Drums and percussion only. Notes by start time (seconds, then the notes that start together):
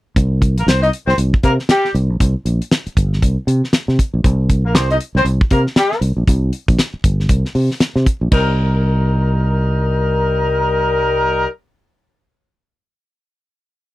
0.16 kick, closed hi-hat
0.42 kick, closed hi-hat
0.58 closed hi-hat
0.68 snare, closed hi-hat
0.83 closed hi-hat
0.93 closed hi-hat
1.09 snare
1.18 closed hi-hat
1.34 kick
1.43 kick, closed hi-hat
1.59 snare
1.69 snare, closed hi-hat
1.85 snare
1.95 closed hi-hat
2.20 kick, closed hi-hat
2.46 closed hi-hat
2.62 closed hi-hat
2.71 snare, closed hi-hat
2.87 closed hi-hat
2.97 kick, closed hi-hat
3.13 snare
3.22 kick, closed hi-hat
3.48 closed hi-hat
3.64 snare
3.73 snare, closed hi-hat
3.89 snare
3.99 kick, closed hi-hat
4.24 kick, closed hi-hat
4.50 kick, closed hi-hat
4.75 snare, closed hi-hat
4.91 closed hi-hat
5.00 closed hi-hat
5.16 snare
5.26 closed hi-hat
5.41 kick
5.51 kick, closed hi-hat
5.67 snare
5.76 snare, closed hi-hat
5.92 snare
6.02 closed hi-hat
6.27 kick, closed hi-hat
6.53 closed hi-hat
6.68 kick, closed hi-hat
6.79 snare, closed hi-hat
7.04 kick, closed hi-hat
7.20 snare
7.29 kick, closed hi-hat
7.45 snare
7.55 open hi-hat
7.71 snare
7.80 snare, closed hi-hat
7.96 snare
8.06 kick, closed hi-hat
8.32 kick, crash